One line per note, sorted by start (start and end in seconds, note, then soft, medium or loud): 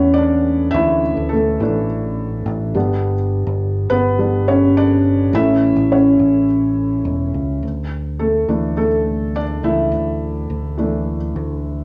0.00 0.70 E2 medium
0.00 0.74 E3 medium
0.00 0.75 A3 medium
0.00 2.76 B3 medium
0.00 0.16 C#4 medium
0.00 0.18 D4 medium
0.00 2.77 B4 medium
0.00 0.14 C#5 medium
0.14 0.74 D5 medium
0.18 0.71 D4 medium
0.71 1.14 D2 loud
0.71 1.00 E3 soft
0.71 1.32 E5 loud
0.75 1.00 A3 soft
0.75 1.01 D4 medium
0.75 1.28 E4 medium
1.17 1.57 D2 medium
1.29 1.60 A3 medium
1.29 1.84 A4 medium
1.60 2.42 A1 medium
1.60 2.42 E3 medium
1.60 2.43 A3 medium
1.60 2.43 D4 medium
2.46 2.73 A1 loud
2.74 3.42 G1 loud
2.74 3.13 G3 medium
2.74 3.13 B3 soft
2.74 3.14 D4 medium
3.47 3.87 G1 loud
3.90 5.29 G1 medium
3.90 4.18 B3 medium
3.90 4.49 B4 loud
4.19 4.44 G3 soft
4.19 4.45 B3 soft
4.19 4.45 D4 medium
4.48 4.75 C#4 medium
4.48 4.74 C#5 medium
4.77 5.30 D4 medium
4.77 5.36 D5 medium
5.33 5.73 A1 loud
5.33 5.72 E3 medium
5.33 5.72 A3 soft
5.33 5.72 C#4 medium
5.33 5.87 E4 medium
5.33 5.93 E5 loud
5.76 6.16 A1 medium
5.92 6.45 C#4 medium
5.92 6.45 C#5 medium
6.19 7.01 A1 medium
7.05 7.32 E1 medium
7.34 7.61 C#2 medium
7.63 8.45 D2 medium
8.19 8.47 A3 soft
8.19 8.73 A4 medium
8.49 9.60 D2 medium
8.49 8.87 E3 medium
8.49 8.76 A3 soft
8.49 8.87 D4 medium
8.77 9.31 A3 medium
8.77 9.37 A4 medium
9.36 9.42 D4 medium
9.36 9.42 D5 medium
9.63 9.90 C#2 medium
9.63 9.89 E3 soft
9.63 9.90 A3 soft
9.63 9.90 D4 soft
9.63 10.75 E4 medium
9.63 10.75 E5 medium
9.92 10.46 D2 medium
10.50 11.32 D2 medium
10.78 11.17 E3 medium
10.78 11.17 A3 soft
10.78 11.17 D4 medium
11.36 11.84 D2 medium